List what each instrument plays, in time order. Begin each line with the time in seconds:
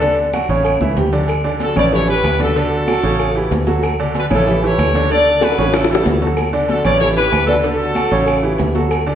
Already playing: fingered electric bass D2, trumpet A4
0.01 upright piano D3 D4 D5, cowbell, high conga, low agogo, maracas
0.17 high conga, maracas
0.33 upright piano F#3 F#4 F#5, cowbell, high conga, low timbale, low agogo, claves, maracas
0.49 fingered electric bass A1, upright piano C#3 C#4 C#5, cowbell, high conga, maracas
0.65 cowbell, high conga, low agogo, claves, maracas
0.81 fingered electric bass C#2, upright piano E3 E4 E5, high conga, maracas
0.97 fingered electric bass D2, upright piano G3 G4 G5, cowbell, high conga, low timbale, low agogo, maracas
1.13 upright piano D3 D4 D5, cowbell, low conga, maracas
1.28 cowbell, high conga, low agogo, claves, maracas
1.44 upright piano D3 D4 D5, high conga, maracas
1.60 horn section F#4 A4, cowbell, high conga, low timbale, low agogo, maracas
1.76 fingered electric bass A1, upright piano C#3 C#4 C#5, horn section B4 D5, cowbell, high conga, low conga, low agogo, claves, maracas
1.92 upright piano E3 E4 G4, horn section A4 C#5, cowbell, high conga, low conga, maracas
2.08 upright piano E3 E4 G4, horn section G4 B4, high conga, low agogo, maracas
2.24 fingered electric bass D2, cowbell, high conga, low timbale, low agogo, claves, maracas
2.40 upright piano D3 D4 D5, horn section F#4 A4, cowbell, high conga, maracas
2.56 upright piano D3 D4 D5, horn section F#4 A4, cowbell, high conga, low agogo, maracas
2.72 high conga, maracas
2.88 upright piano F#3 F#4 A4, cowbell, high conga, low timbale, low agogo, claves, maracas
3.03 fingered electric bass A1, upright piano C#3 C#4 C#5, cowbell, high conga, maracas
3.20 cowbell, low agogo, claves, maracas
3.35 upright piano E3 E4 G4, high conga, maracas
3.51 fingered electric bass D2, cowbell, high conga, low timbale, low agogo, maracas
3.67 upright piano F#3 F#4 A4, cowbell, high conga, maracas
3.83 cowbell, high conga, low agogo, claves, maracas
4.00 upright piano D3 D4 D5, high conga, maracas
4.15 horn section F#4 B4, cowbell, high conga, low timbale, low agogo, maracas
4.30 fingered electric bass A1, upright piano C#3 C#4 C#5, horn section E4 A4, cowbell, high conga, low conga, low agogo, claves, maracas
4.47 upright piano E3 E4 G4, cowbell, high conga, low conga, maracas
4.63 upright piano E3 E4 G4, horn section A4 C#5, high conga, low agogo, maracas
4.78 fingered electric bass D2, cowbell, high conga, low timbale, low agogo, claves, maracas
4.94 upright piano D3 D4 D5, cowbell, high conga, maracas
5.10 upright piano D3 D4 D5, horn section A4 D5, cowbell, high conga, low agogo, maracas
5.26 high conga, maracas
5.41 upright piano F#3 F#4 A4, horn section F#4 B4, cowbell, high bongo, high conga, low timbale, low agogo, claves, maracas
5.52 high bongo
5.57 fingered electric bass A1, upright piano C#3 C#4 C#5, cowbell, high conga, maracas
5.62 high bongo
5.74 horn section E4 A4, cowbell, low bongo, high conga, low agogo, claves, maracas
5.84 low bongo
5.89 upright piano E3 G3 E4, horn section F#4 A4, high conga, maracas
5.95 low bongo
6.05 fingered electric bass D2, cowbell, low bongo, high conga, low timbale, low agogo, maracas
6.21 upright piano F#3 F#4 A4, cowbell, high conga, maracas
6.27 low bongo
6.37 cowbell, high conga, low agogo, claves, maracas
6.53 upright piano D3 D4 D5, high conga, maracas
6.69 horn section F#4 A4, cowbell, high conga, low timbale, low agogo, maracas
6.85 fingered electric bass A1, upright piano C#3 C#4 C#5, horn section B4 D5, cowbell, high conga, low conga, low agogo, claves, maracas
7.00 upright piano E3 E4 G4, horn section A4 C#5, cowbell, high conga, maracas
7.16 upright piano E3 E4 G4, horn section G4 B4, high conga, low agogo, maracas
7.32 fingered electric bass D2, cowbell, high conga, low timbale, low agogo, claves, maracas
7.46 upright piano D3 D4 D5, horn section F#4 A4, cowbell, high conga, maracas
7.63 upright piano D3 D4 D5, horn section F#4 A4, cowbell, high conga, low agogo, maracas
7.80 high conga, maracas
7.95 upright piano F#3 F#4 A4, cowbell, high conga, low timbale, low agogo, claves, maracas
8.11 fingered electric bass A1, upright piano C#3 C#4 C#5, cowbell, high conga, maracas
8.26 cowbell, high conga, low agogo, claves, maracas
8.43 upright piano E3 E4 G4, high conga, maracas
8.58 fingered electric bass D2, cowbell, high conga, low timbale, low agogo, maracas
8.75 upright piano F#3 F#4 A4, cowbell, high conga, maracas
8.91 cowbell, high conga, low agogo, claves, maracas
9.06 upright piano D3 D4 D5, high conga, maracas